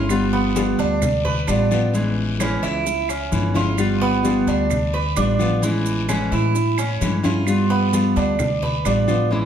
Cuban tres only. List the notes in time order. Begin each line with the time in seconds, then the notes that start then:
Already playing: F4
0.33 B3
0.79 D4
1.25 B4
1.47 D4
2.40 C#4
2.63 E4
3.09 C#4
3.56 F4
4.01 B3
4.47 D4
4.94 B4
5.17 D4
6.09 C#4
6.32 E4
6.78 C#4
7.24 F4
7.70 B3
8.16 D4
8.62 B4
8.85 D4